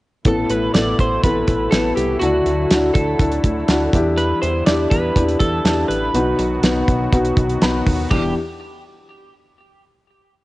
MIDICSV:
0, 0, Header, 1, 6, 480
1, 0, Start_track
1, 0, Key_signature, 1, "minor"
1, 0, Tempo, 491400
1, 244, Time_signature, 4, 2, 24, 8
1, 10202, End_track
2, 0, Start_track
2, 0, Title_t, "Clean electric guitar"
2, 0, Program_c, 0, 27
2, 271, Note_on_c, 0, 69, 88
2, 493, Note_on_c, 0, 71, 83
2, 505, Note_off_c, 0, 69, 0
2, 718, Note_off_c, 0, 71, 0
2, 722, Note_on_c, 0, 74, 81
2, 946, Note_off_c, 0, 74, 0
2, 981, Note_on_c, 0, 72, 83
2, 1208, Note_off_c, 0, 72, 0
2, 1212, Note_on_c, 0, 71, 85
2, 1655, Note_off_c, 0, 71, 0
2, 1670, Note_on_c, 0, 69, 75
2, 1910, Note_off_c, 0, 69, 0
2, 1914, Note_on_c, 0, 67, 72
2, 2141, Note_off_c, 0, 67, 0
2, 2145, Note_on_c, 0, 66, 78
2, 2866, Note_off_c, 0, 66, 0
2, 2870, Note_on_c, 0, 69, 71
2, 3798, Note_off_c, 0, 69, 0
2, 4078, Note_on_c, 0, 71, 93
2, 4310, Note_off_c, 0, 71, 0
2, 4314, Note_on_c, 0, 72, 87
2, 4551, Note_off_c, 0, 72, 0
2, 4555, Note_on_c, 0, 74, 103
2, 4784, Note_off_c, 0, 74, 0
2, 4788, Note_on_c, 0, 71, 85
2, 5266, Note_off_c, 0, 71, 0
2, 5270, Note_on_c, 0, 69, 86
2, 5722, Note_off_c, 0, 69, 0
2, 5746, Note_on_c, 0, 71, 75
2, 7635, Note_off_c, 0, 71, 0
2, 7918, Note_on_c, 0, 67, 79
2, 8143, Note_off_c, 0, 67, 0
2, 10202, End_track
3, 0, Start_track
3, 0, Title_t, "Felt piano"
3, 0, Program_c, 1, 0
3, 245, Note_on_c, 1, 45, 51
3, 246, Note_on_c, 1, 64, 67
3, 247, Note_on_c, 1, 59, 71
3, 253, Note_on_c, 1, 69, 78
3, 401, Control_c, 1, 64, 127
3, 589, Note_off_c, 1, 59, 0
3, 589, Note_off_c, 1, 64, 0
3, 592, Note_off_c, 1, 69, 0
3, 730, Note_on_c, 1, 59, 70
3, 731, Note_on_c, 1, 69, 82
3, 732, Note_on_c, 1, 64, 68
3, 926, Note_off_c, 1, 45, 0
3, 1071, Note_off_c, 1, 59, 0
3, 1071, Note_off_c, 1, 64, 0
3, 1071, Note_off_c, 1, 69, 0
3, 1214, Note_on_c, 1, 59, 61
3, 1217, Note_on_c, 1, 64, 62
3, 1218, Note_on_c, 1, 69, 75
3, 1553, Note_off_c, 1, 59, 0
3, 1554, Note_off_c, 1, 64, 0
3, 1554, Note_off_c, 1, 69, 0
3, 1688, Note_on_c, 1, 59, 66
3, 1696, Note_on_c, 1, 64, 59
3, 1698, Note_on_c, 1, 71, 75
3, 2029, Note_off_c, 1, 59, 0
3, 2033, Note_off_c, 1, 64, 0
3, 2035, Note_off_c, 1, 71, 0
3, 2175, Note_on_c, 1, 66, 85
3, 2176, Control_c, 1, 64, 0
3, 2176, Note_on_c, 1, 50, 56
3, 2176, Note_on_c, 1, 64, 69
3, 2177, Note_on_c, 1, 62, 80
3, 2372, Control_c, 1, 64, 127
3, 2513, Note_off_c, 1, 66, 0
3, 2514, Note_off_c, 1, 62, 0
3, 2514, Note_off_c, 1, 64, 0
3, 2663, Note_on_c, 1, 62, 77
3, 2664, Note_on_c, 1, 64, 67
3, 2667, Note_on_c, 1, 66, 84
3, 2851, Note_off_c, 1, 50, 0
3, 2997, Note_off_c, 1, 62, 0
3, 2998, Note_off_c, 1, 64, 0
3, 2999, Note_off_c, 1, 66, 0
3, 3127, Note_on_c, 1, 62, 65
3, 3129, Note_on_c, 1, 64, 65
3, 3134, Note_on_c, 1, 69, 79
3, 3469, Note_off_c, 1, 62, 0
3, 3470, Note_off_c, 1, 64, 0
3, 3473, Note_off_c, 1, 69, 0
3, 3609, Note_on_c, 1, 62, 78
3, 3612, Note_on_c, 1, 66, 90
3, 3613, Note_on_c, 1, 64, 82
3, 3835, Note_off_c, 1, 62, 0
3, 3838, Note_off_c, 1, 64, 0
3, 3848, Note_off_c, 1, 66, 0
3, 3850, Note_on_c, 1, 62, 78
3, 3853, Note_on_c, 1, 64, 82
3, 3856, Note_on_c, 1, 52, 71
3, 3856, Note_on_c, 1, 67, 91
3, 3857, Control_c, 1, 64, 0
3, 4050, Control_c, 1, 64, 127
3, 4423, Note_off_c, 1, 62, 0
3, 4424, Note_off_c, 1, 64, 0
3, 4426, Note_off_c, 1, 67, 0
3, 4531, Note_off_c, 1, 52, 0
3, 4563, Note_on_c, 1, 62, 80
3, 4565, Note_on_c, 1, 64, 68
3, 4568, Note_on_c, 1, 67, 84
3, 4906, Note_off_c, 1, 62, 0
3, 4908, Note_off_c, 1, 64, 0
3, 4909, Note_off_c, 1, 67, 0
3, 5039, Note_on_c, 1, 62, 65
3, 5044, Note_on_c, 1, 64, 69
3, 5044, Note_on_c, 1, 67, 76
3, 5385, Note_off_c, 1, 62, 0
3, 5387, Note_off_c, 1, 64, 0
3, 5387, Note_off_c, 1, 67, 0
3, 5515, Note_on_c, 1, 62, 69
3, 5518, Note_on_c, 1, 64, 68
3, 5521, Note_on_c, 1, 67, 80
3, 5862, Note_off_c, 1, 62, 0
3, 5864, Note_off_c, 1, 64, 0
3, 5866, Note_off_c, 1, 67, 0
3, 6005, Note_on_c, 1, 59, 87
3, 6007, Note_on_c, 1, 47, 60
3, 6010, Note_on_c, 1, 63, 82
3, 6012, Note_on_c, 1, 66, 94
3, 6016, Control_c, 1, 64, 0
3, 6182, Control_c, 1, 64, 127
3, 6347, Note_off_c, 1, 59, 0
3, 6350, Note_off_c, 1, 63, 0
3, 6351, Note_off_c, 1, 66, 0
3, 6481, Note_on_c, 1, 59, 96
3, 6483, Note_on_c, 1, 63, 87
3, 6490, Note_on_c, 1, 66, 95
3, 6686, Note_off_c, 1, 47, 0
3, 6825, Note_off_c, 1, 59, 0
3, 6826, Note_off_c, 1, 63, 0
3, 6830, Note_off_c, 1, 66, 0
3, 6965, Note_on_c, 1, 59, 85
3, 6967, Note_on_c, 1, 63, 76
3, 6970, Note_on_c, 1, 66, 90
3, 7307, Note_off_c, 1, 59, 0
3, 7308, Note_off_c, 1, 63, 0
3, 7309, Note_off_c, 1, 66, 0
3, 7448, Note_on_c, 1, 66, 85
3, 7450, Note_on_c, 1, 63, 76
3, 7450, Note_on_c, 1, 83, 71
3, 7451, Note_on_c, 1, 59, 89
3, 7788, Note_off_c, 1, 66, 0
3, 7789, Note_off_c, 1, 63, 0
3, 7790, Note_off_c, 1, 59, 0
3, 7893, Note_off_c, 1, 83, 0
3, 7925, Note_on_c, 1, 62, 65
3, 7926, Note_on_c, 1, 67, 80
3, 7927, Note_on_c, 1, 64, 61
3, 7930, Note_on_c, 1, 40, 78
3, 7937, Control_c, 1, 64, 0
3, 8147, Note_off_c, 1, 62, 0
3, 8147, Note_off_c, 1, 67, 0
3, 8148, Note_off_c, 1, 64, 0
3, 8150, Note_off_c, 1, 40, 0
3, 10202, End_track
4, 0, Start_track
4, 0, Title_t, "Pipe organ"
4, 0, Program_c, 2, 19
4, 236, Note_on_c, 2, 47, 55
4, 242, Note_on_c, 2, 57, 56
4, 243, Note_on_c, 2, 64, 64
4, 245, Note_on_c, 2, 52, 54
4, 2141, Note_off_c, 2, 47, 0
4, 2146, Note_off_c, 2, 52, 0
4, 2159, Note_on_c, 2, 50, 68
4, 2161, Note_on_c, 2, 54, 62
4, 3807, Note_off_c, 2, 57, 0
4, 3826, Note_off_c, 2, 54, 0
4, 3840, Note_on_c, 2, 55, 54
4, 3843, Note_on_c, 2, 59, 51
4, 5962, Note_off_c, 2, 50, 0
4, 5964, Note_off_c, 2, 64, 0
4, 5980, Note_off_c, 2, 55, 0
4, 5987, Note_on_c, 2, 51, 71
4, 5987, Note_on_c, 2, 54, 66
4, 5991, Note_on_c, 2, 66, 74
4, 7882, Note_off_c, 2, 59, 0
4, 7895, Note_off_c, 2, 51, 0
4, 7895, Note_off_c, 2, 54, 0
4, 7897, Note_off_c, 2, 66, 0
4, 7919, Note_on_c, 2, 64, 74
4, 7922, Note_on_c, 2, 55, 61
4, 7925, Note_on_c, 2, 50, 71
4, 7927, Note_on_c, 2, 59, 62
4, 8143, Note_off_c, 2, 64, 0
4, 8145, Note_off_c, 2, 55, 0
4, 8147, Note_off_c, 2, 50, 0
4, 8148, Note_off_c, 2, 59, 0
4, 10202, End_track
5, 0, Start_track
5, 0, Title_t, "Analog synth bass"
5, 0, Program_c, 3, 38
5, 247, Note_on_c, 3, 33, 100
5, 442, Note_off_c, 3, 33, 0
5, 487, Note_on_c, 3, 33, 94
5, 683, Note_off_c, 3, 33, 0
5, 729, Note_on_c, 3, 33, 77
5, 924, Note_off_c, 3, 33, 0
5, 968, Note_on_c, 3, 33, 95
5, 1164, Note_off_c, 3, 33, 0
5, 1211, Note_on_c, 3, 33, 92
5, 1405, Note_off_c, 3, 33, 0
5, 1445, Note_on_c, 3, 33, 96
5, 1642, Note_off_c, 3, 33, 0
5, 1689, Note_on_c, 3, 33, 87
5, 1884, Note_off_c, 3, 33, 0
5, 1926, Note_on_c, 3, 36, 88
5, 2122, Note_off_c, 3, 36, 0
5, 2165, Note_on_c, 3, 38, 101
5, 2361, Note_off_c, 3, 38, 0
5, 2401, Note_on_c, 3, 38, 98
5, 2599, Note_off_c, 3, 38, 0
5, 2648, Note_on_c, 3, 38, 89
5, 2843, Note_off_c, 3, 38, 0
5, 2885, Note_on_c, 3, 38, 102
5, 3081, Note_off_c, 3, 38, 0
5, 3120, Note_on_c, 3, 38, 81
5, 3319, Note_off_c, 3, 38, 0
5, 3359, Note_on_c, 3, 38, 95
5, 3558, Note_off_c, 3, 38, 0
5, 3601, Note_on_c, 3, 38, 94
5, 3799, Note_off_c, 3, 38, 0
5, 3840, Note_on_c, 3, 40, 98
5, 4235, Note_off_c, 3, 40, 0
5, 4324, Note_on_c, 3, 40, 108
5, 4521, Note_off_c, 3, 40, 0
5, 4561, Note_on_c, 3, 40, 87
5, 4759, Note_off_c, 3, 40, 0
5, 4799, Note_on_c, 3, 40, 90
5, 4997, Note_off_c, 3, 40, 0
5, 5037, Note_on_c, 3, 40, 99
5, 5236, Note_off_c, 3, 40, 0
5, 5277, Note_on_c, 3, 40, 98
5, 5477, Note_off_c, 3, 40, 0
5, 5514, Note_on_c, 3, 40, 88
5, 5715, Note_off_c, 3, 40, 0
5, 5758, Note_on_c, 3, 33, 90
5, 5957, Note_off_c, 3, 33, 0
5, 5996, Note_on_c, 3, 35, 116
5, 6196, Note_off_c, 3, 35, 0
5, 6240, Note_on_c, 3, 35, 99
5, 6438, Note_off_c, 3, 35, 0
5, 6475, Note_on_c, 3, 35, 93
5, 6675, Note_off_c, 3, 35, 0
5, 6720, Note_on_c, 3, 35, 94
5, 6918, Note_off_c, 3, 35, 0
5, 6959, Note_on_c, 3, 35, 88
5, 7157, Note_off_c, 3, 35, 0
5, 7199, Note_on_c, 3, 35, 96
5, 7397, Note_off_c, 3, 35, 0
5, 7446, Note_on_c, 3, 35, 85
5, 7641, Note_off_c, 3, 35, 0
5, 7687, Note_on_c, 3, 39, 93
5, 7882, Note_off_c, 3, 39, 0
5, 7924, Note_on_c, 3, 28, 91
5, 8146, Note_off_c, 3, 28, 0
5, 10202, End_track
6, 0, Start_track
6, 0, Title_t, "Drums"
6, 241, Note_on_c, 9, 42, 76
6, 245, Note_on_c, 9, 36, 92
6, 339, Note_off_c, 9, 42, 0
6, 342, Note_off_c, 9, 36, 0
6, 483, Note_on_c, 9, 42, 66
6, 580, Note_off_c, 9, 42, 0
6, 726, Note_on_c, 9, 42, 85
6, 731, Note_on_c, 9, 38, 98
6, 824, Note_off_c, 9, 42, 0
6, 829, Note_off_c, 9, 38, 0
6, 967, Note_on_c, 9, 36, 68
6, 967, Note_on_c, 9, 42, 53
6, 1064, Note_off_c, 9, 36, 0
6, 1065, Note_off_c, 9, 42, 0
6, 1207, Note_on_c, 9, 36, 82
6, 1209, Note_on_c, 9, 42, 71
6, 1305, Note_off_c, 9, 36, 0
6, 1306, Note_off_c, 9, 42, 0
6, 1441, Note_on_c, 9, 42, 59
6, 1444, Note_on_c, 9, 36, 75
6, 1539, Note_off_c, 9, 42, 0
6, 1542, Note_off_c, 9, 36, 0
6, 1681, Note_on_c, 9, 42, 75
6, 1685, Note_on_c, 9, 38, 99
6, 1779, Note_off_c, 9, 42, 0
6, 1782, Note_off_c, 9, 38, 0
6, 1927, Note_on_c, 9, 42, 69
6, 2025, Note_off_c, 9, 42, 0
6, 2164, Note_on_c, 9, 42, 71
6, 2262, Note_off_c, 9, 42, 0
6, 2404, Note_on_c, 9, 42, 62
6, 2502, Note_off_c, 9, 42, 0
6, 2644, Note_on_c, 9, 42, 94
6, 2648, Note_on_c, 9, 38, 104
6, 2741, Note_off_c, 9, 42, 0
6, 2746, Note_off_c, 9, 38, 0
6, 2882, Note_on_c, 9, 36, 84
6, 2882, Note_on_c, 9, 42, 63
6, 2980, Note_off_c, 9, 36, 0
6, 2980, Note_off_c, 9, 42, 0
6, 3120, Note_on_c, 9, 36, 88
6, 3122, Note_on_c, 9, 42, 76
6, 3217, Note_off_c, 9, 36, 0
6, 3220, Note_off_c, 9, 42, 0
6, 3239, Note_on_c, 9, 42, 51
6, 3337, Note_off_c, 9, 42, 0
6, 3358, Note_on_c, 9, 42, 66
6, 3359, Note_on_c, 9, 36, 78
6, 3456, Note_off_c, 9, 36, 0
6, 3456, Note_off_c, 9, 42, 0
6, 3597, Note_on_c, 9, 42, 81
6, 3600, Note_on_c, 9, 38, 101
6, 3695, Note_off_c, 9, 42, 0
6, 3698, Note_off_c, 9, 38, 0
6, 3841, Note_on_c, 9, 36, 87
6, 3851, Note_on_c, 9, 42, 71
6, 3939, Note_off_c, 9, 36, 0
6, 3948, Note_off_c, 9, 42, 0
6, 4079, Note_on_c, 9, 42, 67
6, 4176, Note_off_c, 9, 42, 0
6, 4324, Note_on_c, 9, 42, 66
6, 4422, Note_off_c, 9, 42, 0
6, 4556, Note_on_c, 9, 42, 85
6, 4561, Note_on_c, 9, 38, 102
6, 4654, Note_off_c, 9, 42, 0
6, 4659, Note_off_c, 9, 38, 0
6, 4800, Note_on_c, 9, 36, 85
6, 4804, Note_on_c, 9, 42, 64
6, 4897, Note_off_c, 9, 36, 0
6, 4901, Note_off_c, 9, 42, 0
6, 5040, Note_on_c, 9, 36, 94
6, 5043, Note_on_c, 9, 42, 78
6, 5137, Note_off_c, 9, 36, 0
6, 5141, Note_off_c, 9, 42, 0
6, 5162, Note_on_c, 9, 42, 47
6, 5260, Note_off_c, 9, 42, 0
6, 5276, Note_on_c, 9, 42, 62
6, 5277, Note_on_c, 9, 36, 80
6, 5374, Note_off_c, 9, 42, 0
6, 5375, Note_off_c, 9, 36, 0
6, 5520, Note_on_c, 9, 42, 81
6, 5524, Note_on_c, 9, 38, 107
6, 5618, Note_off_c, 9, 42, 0
6, 5621, Note_off_c, 9, 38, 0
6, 5770, Note_on_c, 9, 42, 66
6, 5867, Note_off_c, 9, 42, 0
6, 6003, Note_on_c, 9, 42, 74
6, 6101, Note_off_c, 9, 42, 0
6, 6241, Note_on_c, 9, 42, 77
6, 6338, Note_off_c, 9, 42, 0
6, 6478, Note_on_c, 9, 42, 102
6, 6483, Note_on_c, 9, 38, 101
6, 6575, Note_off_c, 9, 42, 0
6, 6580, Note_off_c, 9, 38, 0
6, 6721, Note_on_c, 9, 36, 80
6, 6723, Note_on_c, 9, 42, 59
6, 6818, Note_off_c, 9, 36, 0
6, 6820, Note_off_c, 9, 42, 0
6, 6960, Note_on_c, 9, 36, 91
6, 6963, Note_on_c, 9, 42, 78
6, 7058, Note_off_c, 9, 36, 0
6, 7060, Note_off_c, 9, 42, 0
6, 7079, Note_on_c, 9, 42, 48
6, 7177, Note_off_c, 9, 42, 0
6, 7197, Note_on_c, 9, 42, 71
6, 7198, Note_on_c, 9, 36, 89
6, 7295, Note_off_c, 9, 42, 0
6, 7296, Note_off_c, 9, 36, 0
6, 7321, Note_on_c, 9, 42, 45
6, 7419, Note_off_c, 9, 42, 0
6, 7440, Note_on_c, 9, 42, 81
6, 7443, Note_on_c, 9, 38, 108
6, 7537, Note_off_c, 9, 42, 0
6, 7541, Note_off_c, 9, 38, 0
6, 7683, Note_on_c, 9, 36, 86
6, 7686, Note_on_c, 9, 46, 63
6, 7781, Note_off_c, 9, 36, 0
6, 7784, Note_off_c, 9, 46, 0
6, 7920, Note_on_c, 9, 49, 76
6, 7921, Note_on_c, 9, 36, 89
6, 8018, Note_off_c, 9, 49, 0
6, 8019, Note_off_c, 9, 36, 0
6, 10202, End_track
0, 0, End_of_file